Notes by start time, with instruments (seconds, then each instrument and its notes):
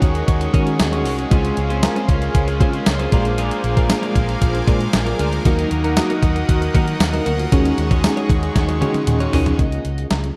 Already playing: fm electric piano G#3 C#4 D#4 F#4 G#4 A#4, distorted electric guitar D#4, analog polysynth F#4 G#4 C#5, analog synth pad G#4 D#5 F#5 C#6
0.01 fingered electric bass D#2, distorted electric guitar D#3 G#3, muted clean electric guitar stroke, kick, closed hi-hat
0.15 muted clean electric guitar stroke, closed hi-hat
0.27 fingered electric bass D#2, distorted electric guitar G#2 D#3 G#3, muted clean electric guitar stroke, kick, closed hi-hat
0.41 muted clean electric guitar stroke, closed hi-hat
0.53 fingered electric bass D#3, fm electric piano G#3 C#4 D#4 F#4 A#4, clean electric guitar C#4 F#4 G#4 C#5, kick, closed hi-hat
0.67 muted clean electric guitar stroke, closed hi-hat
0.79 fingered electric bass D#2, muted clean electric guitar stroke, snare, closed hi-hat, tambourine
0.92 clean electric guitar C#4 F#4 G#4 C#5, closed hi-hat
1.04 fingered electric bass C2, distorted electric guitar D#3 G#3, clean electric guitar C#4 F#4 G#4 C#5, open hi-hat
1.18 muted clean electric guitar stroke, closed hi-hat
1.30 fingered electric bass C#2, distorted electric guitar C#3 G#3 C#4, fm electric piano G#3 C#4 F4 G#4 C5, clean electric guitar C4 F4 G#4 C5, analog polysynth F4 G#4 C#5, analog synth pad F5 G#5 C6, kick, closed hi-hat
1.45 closed hi-hat
1.57 fingered electric bass C#2, muted clean electric guitar stroke, closed hi-hat
1.70 clean electric guitar C4 F4 G#4 C5, closed hi-hat
1.82 fm electric piano G#3 C#4 F4 A#4 C5, muted clean electric guitar stroke, snare, closed hi-hat, tambourine
1.96 clean electric guitar C4 F4 G#4 C5, closed hi-hat
2.08 fingered electric bass C#2, distorted electric guitar G#3 C#4, muted clean electric guitar stroke, kick, closed hi-hat
2.22 muted clean electric guitar stroke, closed hi-hat
2.34 fingered electric bass C#2, distorted electric guitar C#3 G#3 C#4, muted clean electric guitar stroke, kick, closed hi-hat
2.48 muted clean electric guitar stroke, closed hi-hat
2.60 fingered electric bass C#3, fm electric piano G#3 C#4 F4 G#4 C5, clean electric guitar C4 F4 G#4 C5, kick, closed hi-hat
2.73 muted clean electric guitar stroke, closed hi-hat
2.86 fingered electric bass C#2, muted clean electric guitar stroke, snare, closed hi-hat, tambourine
2.99 clean electric guitar C4 F4 G#4 C5, closed hi-hat
3.12 fingered electric bass A#1, distorted electric guitar F3 A#3, fm electric piano G#3 A#3 D4 F4 F#4, clean electric guitar G#3 D4 F4 A#4, analog polysynth F4 G#4 C5, analog synth pad A#4 F5 G#5 D6, kick, closed hi-hat
3.19 fm electric piano G#4
3.25 muted clean electric guitar stroke, closed hi-hat
3.37 distorted electric guitar A#2 F3 A#3, clean electric guitar G#3 D4 F4 A#4, closed hi-hat
3.51 closed hi-hat
3.64 fingered electric bass A#1, muted clean electric guitar stroke, closed hi-hat
3.77 clean electric guitar G#3 D4 F4 A#4, kick, closed hi-hat
3.89 fm electric piano G#3 A#3 D4 F4 G#4, snare, closed hi-hat, tambourine
4.02 clean electric guitar G#3 D4 F4 A#4, closed hi-hat
4.15 fingered electric bass A#1, distorted electric guitar F3 A#3, muted clean electric guitar stroke, kick, closed hi-hat
4.28 muted clean electric guitar stroke, closed hi-hat
4.40 fingered electric bass A#1, distorted electric guitar A#2 F3, muted clean electric guitar stroke, kick, closed hi-hat
4.45 distorted electric guitar A#3
4.54 muted clean electric guitar stroke, closed hi-hat
4.67 fingered electric bass A#2, clean electric guitar G#3 D4 F4 A#4, fm electric piano G#3 A#3 D4 F4 G#4, kick, closed hi-hat
4.80 muted clean electric guitar stroke, closed hi-hat
4.93 fingered electric bass A#1, muted clean electric guitar stroke, snare, closed hi-hat, tambourine
5.06 clean electric guitar G#3 D4 F4 A#4, closed hi-hat
5.19 fingered electric bass D2, clean electric guitar G#3 D4 F4 A#4, closed hi-hat
5.32 muted clean electric guitar stroke, closed hi-hat
5.45 fingered electric bass D#2, distorted electric guitar D#3 A#3 D#4, fm electric piano F#3 A#3 D#4 F#4 A#4, clean electric guitar A#3 D#4 F#4 A#4, analog polysynth D#4 F#4 A#4, analog synth pad D#5 F#5 D#6, kick, closed hi-hat
5.59 closed hi-hat
5.71 fingered electric bass D#2, muted clean electric guitar stroke, closed hi-hat
5.84 clean electric guitar A#3 D#4 F#4 A#4, closed hi-hat
5.97 fm electric piano F#3 A#3 D#4 F#4 A#4, muted clean electric guitar stroke, snare, closed hi-hat, tambourine
6.10 clean electric guitar A#3 D#4 F#4 A#4, closed hi-hat
6.22 fingered electric bass D#2, distorted electric guitar A#3 D#4, muted clean electric guitar stroke, kick, closed hi-hat
6.36 muted clean electric guitar stroke, closed hi-hat
6.47 fingered electric bass D#2, distorted electric guitar D#3 A#3, muted clean electric guitar stroke, kick, closed hi-hat
6.52 distorted electric guitar D#4
6.61 muted clean electric guitar stroke, closed hi-hat
6.74 fingered electric bass D#3, fm electric piano F#3 A#3 D#4 F#4 A#4, clean electric guitar A#3 D#4 F#4 A#4, kick, closed hi-hat
6.87 muted clean electric guitar stroke, closed hi-hat
7.00 fingered electric bass D#2, fm electric piano C5 F5, muted clean electric guitar stroke, snare, closed hi-hat, tambourine
7.13 clean electric guitar A#3 D#4 F#4 A#4, closed hi-hat
7.26 fingered electric bass D2, clean electric guitar A#3 D#4 F#4 A#4, fm electric piano A#4 D#5, closed hi-hat
7.39 fm electric piano F4 A#4, muted clean electric guitar stroke, closed hi-hat
7.51 fingered electric bass D#2, distorted electric guitar G#2 D#3, fm electric piano G#3 C#4 D#4 F#4 G#4, clean electric guitar C#4 F#4 G#4 C#5, analog polysynth C#4 D#4 G#4, analog synth pad G#4 C#6, kick, closed hi-hat
7.56 distorted electric guitar G#3
7.65 closed hi-hat
7.78 fingered electric bass D#2, muted clean electric guitar stroke, closed hi-hat
7.91 clean electric guitar C#4 F#4 G#4 C#5, kick, closed hi-hat
8.04 fm electric piano G#3 C#4 D#4 F#4 G#4, muted clean electric guitar stroke, snare, closed hi-hat, tambourine
8.16 clean electric guitar C#4 F#4 G#4 C#5, closed hi-hat
8.29 fingered electric bass D#2, muted clean electric guitar stroke, kick, closed hi-hat
8.43 muted clean electric guitar stroke, closed hi-hat
8.55 fingered electric bass D#2, distorted electric guitar G#2 D#3 G#3, muted clean electric guitar stroke, kick, snare, closed hi-hat
8.68 muted clean electric guitar stroke, closed hi-hat
8.81 fingered electric bass D#3, fm electric piano G#3 C#4 D#4 F#4 G#4, clean electric guitar C#4 F#4 G#4 C#5, closed hi-hat, high tom
8.94 muted clean electric guitar stroke, closed hi-hat, high tom
9.07 fingered electric bass D#2, muted clean electric guitar stroke, closed hi-hat, mid tom
9.20 clean electric guitar C#4 F#4 G#4 C#5, fm electric piano D#4 G#4, closed hi-hat
9.32 fingered electric bass C2, distorted electric guitar D#3 G#3, clean electric guitar C#4 F#4 G#4 C#5, fm electric piano F4 A#4, floor tom, open hi-hat
9.46 fm electric piano D#4 G#4, muted clean electric guitar stroke, closed hi-hat, floor tom
9.59 fingered electric bass C#2, fm electric piano A#3 C#4 D#4 G#4, kick, closed hi-hat
9.66 fm electric piano F4
9.72 closed hi-hat
9.85 fingered electric bass C#2, closed hi-hat
9.98 closed hi-hat
10.11 fingered electric bass C#2, snare, closed hi-hat
10.24 closed hi-hat